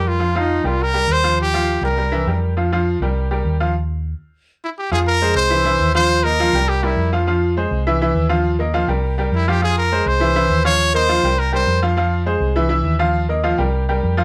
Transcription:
Already playing: fingered electric bass F2, upright piano G3 G4 A#4
0.08 trumpet F4
0.19 upright piano F3 F4 F5
0.35 upright piano F3 F4 F5, trumpet D#4
0.64 fingered electric bass C2, upright piano G3 G4 A#4, trumpet F4
0.82 trumpet A#4
0.94 upright piano G3 G4 A#4
1.08 fingered electric bass D#2
1.12 trumpet C5
1.24 upright piano F3 F4 F5
1.42 trumpet G4
1.54 upright piano F3 F4 F5
1.81 fingered electric bass C2, upright piano G3 G4 A#4, trumpet A#4
1.97 upright piano G3 G4 A#4
2.12 upright piano E3 E4 E5
2.26 fingered electric bass F2, upright piano G3 G4 A#4
2.57 upright piano F3 F4 F5
2.72 upright piano F3 F4 F5
3.00 fingered electric bass C2, upright piano G3 G4 A#4
3.31 upright piano G3 G4 A#4
3.45 fingered electric bass D#2
3.60 upright piano F3 F4 F5
4.64 trumpet E4
4.78 trumpet G4
4.91 fingered electric bass F2, upright piano F3 F4 F5, trumpet G#4
5.07 trumpet A#4
5.22 upright piano G#3 G#4 C5
5.35 fingered electric bass C2, trumpet C5
5.50 upright piano E3 E4 E5
5.65 upright piano E3 E4 E5
5.80 fingered electric bass D#2
5.95 upright piano F3 F4 F5, trumpet C5
6.24 upright piano A#3 A#4 D#5, trumpet A#4
6.40 upright piano F3 F4 F5
6.53 fingered electric bass C2, upright piano G3 G4 A#4
6.69 trumpet G4
6.83 upright piano G3 G4 A#4, trumpet E4
6.97 fingered electric bass F2
7.13 upright piano F3 F4 F5
7.27 upright piano F3 F4 F5
7.57 upright piano G#3 G#4 C5
7.71 fingered electric bass C2
7.87 upright piano E3 E4 E5
8.02 upright piano E3 E4 E5
8.15 fingered electric bass D#2
8.29 upright piano F3 F4 F5
8.59 upright piano A#3 A#4 D#5
8.74 upright piano F3 F4 F5
8.88 fingered electric bass C2, upright piano G3 G4 A#4
9.18 upright piano G3 G4 A#4
9.32 fingered electric bass F2, trumpet E4
9.48 upright piano F3 F4 F5, trumpet G4
9.62 upright piano F3 F4 F5, trumpet G#4
9.78 trumpet A#4
9.92 upright piano G#3 G#4 C5
10.06 fingered electric bass C2, trumpet C5
10.20 upright piano E3 E4 E5
10.36 upright piano E3 E4 E5
10.49 fingered electric bass D#2
10.64 upright piano F3 F4 F5, trumpet C#5
10.94 upright piano A#3 A#4 D#5, trumpet C5
11.09 upright piano F3 F4 F5
11.23 fingered electric bass C2, upright piano G3 G4 A#4
11.39 trumpet A#4
11.52 upright piano G3 G4 A#4, trumpet C5
11.67 fingered electric bass F2
11.82 upright piano F3 F4 F5
11.97 upright piano F3 F4 F5
12.26 upright piano G#3 G#4 C5
12.40 fingered electric bass C2
12.56 upright piano E3 E4 E5
12.69 upright piano E3 E4 E5
12.84 fingered electric bass D#2
12.99 upright piano F3 F4 F5
13.29 upright piano A#3 A#4 D#5
13.44 upright piano F3 F4 F5
13.58 fingered electric bass C2, upright piano G3 G4 A#4
13.89 upright piano G3 G4 A#4
14.03 fingered electric bass F2
14.17 upright piano F3 F4 F5

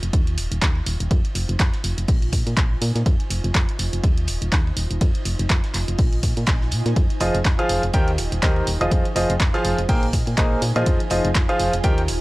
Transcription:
Already playing: ambient pad F4 D#5
0.03 fm bass F1, closed hi-hat
0.13 fm bass D#2, ambient pad D#4, kick, closed hi-hat, ride
0.27 closed hi-hat
0.38 fm bass D#1, open hi-hat, ride
0.52 fm bass D#1, closed hi-hat
0.58 ambient pad C5
0.62 fm bass D#2, kick, snare, clap, closed hi-hat, ride
0.75 ride
0.86 fm bass D#1, open hi-hat, ride
1.00 fm bass D#1, closed hi-hat
1.11 fm bass F2, ambient pad F4, kick, closed hi-hat, ride
1.25 closed hi-hat
1.35 fm bass F1, open hi-hat, ride
1.49 fm bass F1, closed hi-hat
1.55 ambient pad D#5 G#5
1.59 fm bass F2, kick, snare, clap, closed hi-hat, ride
1.73 snare, closed hi-hat
1.84 fm bass F1, open hi-hat, ride
1.98 fm bass F1, closed hi-hat
2.08 fm bass A#1, ambient pad D#4, kick, closed hi-hat, open hi-hat
2.22 closed hi-hat
2.32 fm bass A#2, kick, open hi-hat, ride
2.47 fm bass A#2, ambient pad C5, closed hi-hat
2.57 fm bass A#1, kick, clap, closed hi-hat
2.82 fm bass A#2, open hi-hat, ride
2.95 fm bass A#2, snare, closed hi-hat
3.06 fm bass F2, ambient pad F4, kick, closed hi-hat, ride
3.20 closed hi-hat
3.30 fm bass F1, open hi-hat, ride
3.39 ambient pad D#5
3.44 fm bass F1, closed hi-hat
3.54 fm bass F2, kick, snare, clap, closed hi-hat, ride
3.69 closed hi-hat
3.79 fm bass F1, open hi-hat, ride
3.93 fm bass F1, closed hi-hat
4.04 fm bass D#2, ambient pad D#4, kick, closed hi-hat, ride
4.16 ambient pad C5, closed hi-hat
4.27 fm bass D#1, open hi-hat, ride
4.42 fm bass D#1, closed hi-hat
4.52 fm bass D#2, kick, snare, clap, closed hi-hat, ride
4.67 ride
4.77 fm bass D#1, open hi-hat
4.91 fm bass D#1, closed hi-hat
5.01 fm bass F2, ambient pad F4, kick, closed hi-hat, ride
5.15 closed hi-hat
5.24 fm bass F1, ambient pad D#5 G#5, open hi-hat, ride
5.39 fm bass F1, closed hi-hat
5.50 fm bass F2, kick, snare, clap, closed hi-hat, ride
5.64 snare, closed hi-hat
5.74 fm bass F1, clap, open hi-hat, ride
5.88 fm bass F1, closed hi-hat
5.98 fm bass A#1, ambient pad D#4, kick, closed hi-hat, open hi-hat
6.13 closed hi-hat
6.23 fm bass A#2, kick, open hi-hat, ride
6.37 fm bass A#2, ambient pad C5, closed hi-hat
6.46 fm bass A#1, kick, snare, clap, closed hi-hat, ride
6.61 snare
6.71 fm bass A#2, open hi-hat, ride
6.86 fm bass A#2, snare, closed hi-hat
6.96 fm bass F2, ambient pad F4, kick, closed hi-hat, ride
7.10 closed hi-hat
7.20 fm bass F1, grand piano F3 F4 G#4 C5 D#5, open hi-hat, ride
7.35 fm bass F1, closed hi-hat
7.41 ambient pad D#5, ride
7.45 fm bass F2, kick, snare, clap, closed hi-hat
7.59 grand piano F3 F4 G#4 C5 F5, closed hi-hat
7.69 fm bass F1, open hi-hat, ride
7.83 fm bass F1, closed hi-hat
7.93 fm bass D#2, grand piano D#3 G4 A#4 C5 G5, ambient pad D#4, kick, closed hi-hat, ride
8.05 ambient pad C5, closed hi-hat
8.18 fm bass D#1, open hi-hat, ride
8.32 fm bass D#1, closed hi-hat
8.42 fm bass D#2, grand piano D#3 G4 A#4 C5 D#5, kick, snare, clap, closed hi-hat, ride
8.56 ride
8.67 fm bass D#1, open hi-hat, ride
8.81 fm bass D#1, grand piano F3 F4 G#4 C5 D#5, closed hi-hat
8.91 fm bass F2, ambient pad F4, kick, closed hi-hat, ride
9.05 closed hi-hat
9.16 fm bass F1, grand piano F3 F4 G#4 C5 D#5, ambient pad D#5, open hi-hat, ride
9.30 fm bass F1, closed hi-hat
9.36 ambient pad G#5
9.40 fm bass F2, kick, snare, clap, closed hi-hat, ride
9.54 grand piano F3 F4 G#4 C5 F5, snare, closed hi-hat
9.64 fm bass F1, open hi-hat, ride
9.78 fm bass F1, closed hi-hat
9.89 fm bass A#1, grand piano A#3 G#4 A#4 C5 G5, ambient pad D#4, kick, closed hi-hat, open hi-hat
10.03 closed hi-hat
10.09 ambient pad C5
10.13 fm bass A#2, kick, open hi-hat, ride
10.27 fm bass A#2, closed hi-hat
10.38 fm bass A#1, grand piano A#3 G#4 A#4 C5 D#5, kick, clap, closed hi-hat
10.62 fm bass A#2, open hi-hat, ride
10.75 fm bass A#2, grand piano F3 F4 G#4 C5 D#5, snare, closed hi-hat
10.86 fm bass F2, ambient pad F4, kick, closed hi-hat, ride
11.00 closed hi-hat
11.10 fm bass F1, grand piano F3 F4 G#4 C5 D#5, open hi-hat, ride
11.25 fm bass F1, closed hi-hat
11.31 ambient pad D#5
11.35 fm bass F2, kick, snare, clap, closed hi-hat, ride
11.49 grand piano F3 F4 G#4 C5 F5, closed hi-hat
11.60 fm bass F1, open hi-hat, ride
11.73 fm bass F1, closed hi-hat
11.84 fm bass D#2, grand piano D#3 G4 A#4 C5 G5, ambient pad D#4, kick, closed hi-hat, ride
11.92 ambient pad C5
11.98 closed hi-hat
12.08 fm bass D#1, open hi-hat, ride

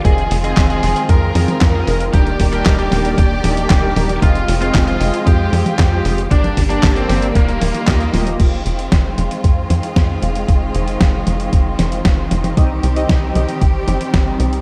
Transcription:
0.05 analog synth bass F1, string section D#3 G#3 C4 F4, analog polysynth C4 F4 G#4 D#5, lead electric guitar G#4, kick, closed hi-hat
0.18 closed hi-hat
0.31 analog synth bass F1, open hi-hat
0.44 analog polysynth C4 F4 G#4 D#5, lead electric guitar G#4, closed hi-hat
0.57 analog synth bass F1, kick, snare, clap, closed hi-hat
0.70 lead electric guitar G#4, closed hi-hat
0.83 analog synth bass F1, analog polysynth C4 F4 G#4 D#5, open hi-hat
0.96 closed hi-hat
1.09 analog synth bass F2, lead electric guitar A#4, kick, closed hi-hat
1.35 analog synth bass F2, analog polysynth C4 F4 G#4 G5, open hi-hat, high tom
1.48 closed hi-hat, high tom
1.61 analog synth bass F2, kick, snare, clap, closed hi-hat
1.74 analog polysynth C4 F4 G#4 D#5
1.87 analog synth bass F1, open hi-hat
2.00 closed hi-hat
2.13 analog synth bass D#1, analog polysynth G3 D4 D#4 A#4, string section A#3 G4 D5, lead electric guitar G4, kick, closed hi-hat
2.27 closed hi-hat
2.40 analog synth bass D#1, kick, open hi-hat
2.53 analog polysynth G3 D4 D#4 A#4, lead electric guitar G4, closed hi-hat
2.66 analog synth bass D#1, kick, snare, clap, closed hi-hat
2.79 lead electric guitar G4, closed hi-hat
2.92 analog synth bass D#1, analog polysynth G3 D4 D#4 A#4, snare, open hi-hat
3.05 closed hi-hat
3.18 analog synth bass D#1, lead electric guitar G4, kick, closed hi-hat
3.44 analog synth bass D#1, analog polysynth G3 D4 D#4 D5, open hi-hat, high tom
3.57 closed hi-hat
3.70 analog synth bass D#1, kick, snare, clap, closed hi-hat
3.83 analog polysynth G3 D4 D#4 A#4
3.96 analog synth bass D#1, open hi-hat, high tom
4.09 closed hi-hat
4.22 analog synth bass F1, string section G#3 C4 F4, analog polysynth C4 F4 G#4 D#5, lead electric guitar F4, kick, closed hi-hat
4.35 closed hi-hat
4.48 analog synth bass F1, open hi-hat
4.61 analog polysynth C4 F4 G#4 D#5, lead electric guitar F4, closed hi-hat
4.74 analog synth bass F1, kick, snare, clap, closed hi-hat
4.88 lead electric guitar F4, closed hi-hat
5.00 analog synth bass F1, analog polysynth C4 F4 G#4 D#5, open hi-hat
5.14 closed hi-hat
5.27 analog synth bass F2, lead electric guitar G4, kick, closed hi-hat
5.53 analog synth bass F2, analog polysynth C4 F4 G#4 G5, open hi-hat, high tom
5.66 closed hi-hat, high tom
5.79 analog synth bass F2, kick, snare, clap, closed hi-hat
5.92 analog polysynth C4 F4 G#4 D#5
6.05 analog synth bass F1, open hi-hat
6.18 closed hi-hat
6.31 analog synth bass G1, string section D3 G3 A#3 G4, analog polysynth A#3 D4 G4 D5, lead electric guitar D4, kick, closed hi-hat
6.44 closed hi-hat, high tom
6.57 analog synth bass G1, kick, open hi-hat
6.70 analog polysynth A#3 D4 G4 D5, lead electric guitar D4, closed hi-hat
6.83 analog synth bass G1, kick, snare, clap, closed hi-hat
6.96 lead electric guitar C4, closed hi-hat
7.09 analog synth bass G1, analog polysynth A#3 D4 G4 D5, snare, open hi-hat
7.22 closed hi-hat
7.35 analog synth bass D#1, string section D#3 F4, lead electric guitar A#3, kick, closed hi-hat
7.49 closed hi-hat
7.61 analog synth bass D#1, open hi-hat, high tom
7.75 closed hi-hat
7.88 analog synth bass D#2, analog polysynth A#3 F4 G4 D#5, kick, snare, clap, closed hi-hat
8.01 closed hi-hat
8.14 analog synth bass D#1, analog polysynth A#3 F4 G4 D#5, open hi-hat, high tom
8.27 closed hi-hat
8.40 analog synth bass F1, string section D#3 G#3 C4 F4, kick, closed hi-hat, crash
8.66 analog synth bass F1, closed hi-hat
8.79 closed hi-hat
8.92 analog synth bass F1, kick, snare, closed hi-hat
9.18 analog synth bass F1, closed hi-hat, high tom
9.31 closed hi-hat
9.44 analog synth bass F2, kick, closed hi-hat
9.70 analog synth bass F2, closed hi-hat, high tom
9.83 closed hi-hat
9.96 analog synth bass F2, kick, snare, closed hi-hat
10.22 analog synth bass F1, closed hi-hat
10.35 closed hi-hat
10.48 analog synth bass F1, kick, closed hi-hat
10.75 analog synth bass F1, closed hi-hat
10.88 closed hi-hat
11.01 analog synth bass F1, kick, snare, closed hi-hat
11.27 analog synth bass F1, closed hi-hat, high tom
11.40 closed hi-hat
11.53 analog synth bass F1, kick, closed hi-hat
11.79 analog synth bass F1, snare, closed hi-hat, high tom
11.92 closed hi-hat
12.05 analog synth bass F1, kick, snare, closed hi-hat
12.31 analog synth bass F1, closed hi-hat, high tom
12.44 closed hi-hat, high tom
12.57 analog synth bass C2, string section G3 G4, analog polysynth C4 D#4 G4 D#5, kick, closed hi-hat
12.83 analog synth bass C2, closed hi-hat
12.96 analog polysynth C4 D#4 G4 D#5, closed hi-hat
13.09 analog synth bass C2, kick, snare, closed hi-hat
13.35 analog synth bass C2, analog polysynth C4 D#4 G4 D#5, closed hi-hat, high tom
13.49 closed hi-hat
13.61 analog synth bass G1, kick, closed hi-hat
13.88 analog synth bass G1, analog polysynth C4 D#4 G4 G5, closed hi-hat, high tom
14.01 closed hi-hat
14.14 analog synth bass G1, kick, snare, closed hi-hat
14.27 analog polysynth C4 D#4 G4 D#5
14.40 analog synth bass C2, closed hi-hat
14.53 closed hi-hat

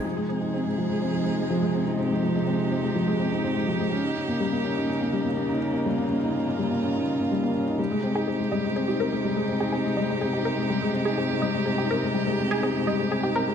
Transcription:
0.04 string quartet C3 F3 G#3 D#4 G#4, felt piano F3
0.17 felt piano G#3
0.29 felt piano C4
0.41 felt piano D#4
0.54 felt piano C4
0.66 felt piano G#3
0.78 felt piano F3
0.90 felt piano G#3
1.02 felt piano C4
1.14 felt piano D#4
1.27 felt piano C4
1.38 felt piano G#3
1.50 felt piano F3
1.62 felt piano G#3
1.74 felt piano C4
1.87 felt piano D#4
1.99 felt piano C4, string quartet G4
2.11 felt piano G#3
2.23 felt piano F3
2.35 felt piano G#3
2.47 felt piano C4
2.59 felt piano D#4
2.71 felt piano C4
2.84 felt piano G#3
2.95 felt piano F3
3.08 felt piano G#3
3.19 felt piano C4
3.32 felt piano D#4
3.44 felt piano C4
3.56 felt piano G#3
3.68 felt piano F3
3.80 felt piano G#3
3.92 string quartet C#3 A#3, felt piano C#4
4.04 felt piano D#4
4.16 felt piano C#4
4.29 felt piano A#3
4.40 felt piano G3
4.53 felt piano A#3
4.64 felt piano C#4
4.77 felt piano D#4
4.89 felt piano C#4
5.01 felt piano A#3
5.13 felt piano G3
5.25 felt piano A#3
5.37 felt piano C#4
5.49 felt piano D#4
5.61 felt piano C#4
5.74 felt piano A#3
5.86 felt piano G3, string quartet F4
5.98 felt piano A#3
6.10 felt piano C#4
6.23 felt piano D#4
6.35 felt piano C#4
6.47 felt piano A#3
6.59 felt piano G3
6.71 felt piano A#3
6.83 felt piano C#4
6.95 felt piano D#4
7.08 felt piano C#4
7.20 felt piano A#3
7.32 felt piano G3
7.43 felt piano A#3
7.55 felt piano C#4
7.67 felt piano D#4
7.79 string quartet C3 D#4 G4, felt piano G3
7.91 felt piano G#3
8.04 felt piano C4
8.15 felt piano D#4, synth arpeggio sound G#4
8.27 felt piano C4, synth arpeggio sound G#4
8.40 felt piano G#3
8.52 felt piano G3, synth arpeggio sound D#5
8.64 felt piano G#3
8.76 felt piano C4, synth arpeggio sound G#4
8.88 felt piano D#4, synth arpeggio sound G4
9.00 felt piano C4, synth arpeggio sound A#4
9.12 felt piano G#3
9.24 felt piano G3
9.36 felt piano G#3
9.49 felt piano C4
9.60 felt piano D#4, synth arpeggio sound G#4
9.73 felt piano C4, synth arpeggio sound G#4
9.85 felt piano G#3
9.97 felt piano G3, synth arpeggio sound D#5
10.10 felt piano G#3
10.21 felt piano C4, synth arpeggio sound G#4
10.33 felt piano D#4, synth arpeggio sound G4
10.45 felt piano C4, synth arpeggio sound A#4
10.58 felt piano G#3
10.70 felt piano G3
10.82 felt piano G#3
10.94 felt piano C4
11.05 felt piano D#4, synth arpeggio sound G#4
11.18 felt piano C4, synth arpeggio sound G#4
11.30 felt piano G#3
11.42 felt piano G3, synth arpeggio sound D#5
11.54 felt piano G#3
11.66 felt piano C4, synth arpeggio sound G#4
11.78 felt piano D#4, synth arpeggio sound G4
11.90 felt piano C4, synth arpeggio sound A#4
12.03 felt piano G#3
12.14 felt piano G3
12.27 felt piano G#3
12.39 felt piano C4
12.50 felt piano D#4, synth arpeggio sound G#4
12.63 felt piano C4, synth arpeggio sound G#4
12.75 felt piano G#3
12.87 felt piano G3, synth arpeggio sound D#5
12.99 felt piano G#3
13.11 felt piano C4, synth arpeggio sound G#4
13.23 felt piano D#4, synth arpeggio sound G4
13.35 felt piano C4, synth arpeggio sound A#4
13.47 felt piano G#3

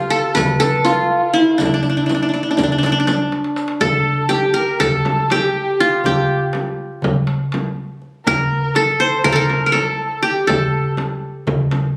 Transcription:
Already playing: kamancheh F4, qanun F4 G4
0.10 qanun A4, kamancheh A4, riq
0.35 qanun B4, kamancheh B4, riq, darbuka dum, frame drum
0.60 qanun A4, riq, darbuka tek, frame drum
0.85 qanun F4, kamancheh F4, riq, darbuka tek, frame drum
1.33 qanun E4
1.58 qanun D4, kamancheh D4, riq, darbuka dum, frame drum
1.65 qanun D4, kamancheh E4
1.74 qanun D4, kamancheh D4
1.83 qanun D4, kamancheh E4, riq, darbuka ka
1.90 qanun D4, kamancheh D4
1.97 qanun D4, kamancheh E4
2.06 qanun D4, kamancheh D4, riq, darbuka tek
2.10 frame drum
2.15 qanun D4, kamancheh E4
2.22 qanun D4, kamancheh D4
2.29 qanun D4
2.33 qanun D4, kamancheh E4, riq, darbuka ka
2.40 kamancheh D4, qanun D4
2.48 qanun D4, kamancheh E4
2.57 qanun D4, kamancheh D4, riq, frame drum, darbuka dum
2.63 qanun D4, kamancheh E4
2.72 qanun D4, kamancheh D4
2.78 qanun D4, kamancheh E4
2.83 qanun D4, riq, darbuka tek, frame drum
2.90 kamancheh D4, qanun D4
3.00 qanun D4
3.07 qanun D4, riq, darbuka tek, frame drum
3.32 darbuka tek
3.44 darbuka ka
3.56 riq, darbuka tek
3.68 darbuka ka
3.81 qanun A4, kamancheh A4, darbuka dum, frame drum
4.06 darbuka ka
4.29 qanun G4, kamancheh G4, darbuka tek, frame drum
4.54 qanun A#4, kamancheh A#4
4.80 qanun A4, kamancheh A4, darbuka dum, frame drum
5.05 darbuka tek, frame drum
5.30 kamancheh G4, qanun G4, darbuka tek, frame drum
5.80 qanun F4
6.04 kamancheh G4, qanun G4, darbuka dum, frame drum
6.11 kamancheh A4
6.17 kamancheh G4
6.29 darbuka ka
6.53 darbuka tek, frame drum
7.02 darbuka dum, frame drum
7.27 darbuka tek
7.52 darbuka tek, frame drum
8.02 darbuka ka
8.25 kamancheh A#4, qanun A#4, darbuka dum, frame drum
8.52 darbuka ka
8.75 kamancheh A4, qanun A4, darbuka tek, frame drum
9.00 qanun C5, kamancheh C5
9.24 qanun A#4, kamancheh A#4, darbuka dum, frame drum
9.32 qanun A4 A#4
9.39 kamancheh A#4
9.50 darbuka tek, frame drum
9.66 qanun A#4
9.72 qanun A4, kamancheh A4, darbuka tek, frame drum
10.23 qanun G4, kamancheh G4, darbuka ka
10.47 kamancheh A4, qanun A4, darbuka dum, frame drum
10.97 darbuka tek, frame drum
11.47 darbuka dum, frame drum
11.71 darbuka tek, frame drum

